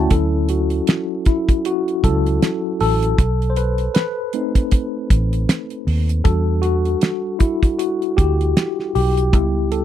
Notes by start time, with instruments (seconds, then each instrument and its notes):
Already playing: tine electric piano A3 C#4 E4 F#4 D5 E5 F#5 G5 A5
0.10 fingered electric bass D2, tine electric piano F#3 C#4 E4 A4, kick, closed hi-hat
0.49 tine electric piano F#4, closed hi-hat
0.70 closed hi-hat
0.87 snare, closed hi-hat
1.25 tine electric piano E4, kick, closed hi-hat
1.49 kick, closed hi-hat
1.65 tine electric piano F#4, closed hi-hat
1.88 closed hi-hat
2.04 fingered electric bass C#2, tine electric piano F#3 C#4 E4 A4, kick, closed hi-hat
2.27 closed hi-hat
2.42 snare, closed hi-hat
2.80 fingered electric bass A1, tine electric piano A4, open hi-hat
3.03 closed hi-hat
3.18 fingered electric bass B1, kick, closed hi-hat
3.42 closed hi-hat
3.50 tine electric piano C5
3.56 tine electric piano B4, closed hi-hat
3.78 closed hi-hat
3.94 tine electric piano B4, snare, closed hi-hat
4.33 tine electric piano A3 C4 D#4, closed hi-hat
4.55 kick, closed hi-hat
4.71 kick, closed hi-hat
5.10 fingered electric bass A1, kick, closed hi-hat
5.33 closed hi-hat
5.49 snare, closed hi-hat
5.70 closed hi-hat
5.87 fingered electric bass D#2, open hi-hat
6.09 closed hi-hat
6.24 fingered electric bass E2, tine electric piano G3 D4 F#4 A4, kick, closed hi-hat
6.62 tine electric piano F#4, closed hi-hat
6.85 closed hi-hat
7.01 snare, closed hi-hat
7.39 tine electric piano E4, kick, closed hi-hat
7.63 kick, closed hi-hat
7.79 tine electric piano F#4, closed hi-hat
8.02 closed hi-hat
8.17 fingered electric bass D2, tine electric piano G4, kick, closed hi-hat
8.41 closed hi-hat
8.57 snare, closed hi-hat
8.79 snare
8.95 fingered electric bass B1, tine electric piano G4, open hi-hat
9.17 closed hi-hat
9.33 fingered electric bass C#2, tine electric piano G3 B3 E4, kick, closed hi-hat
9.72 tine electric piano A4, closed hi-hat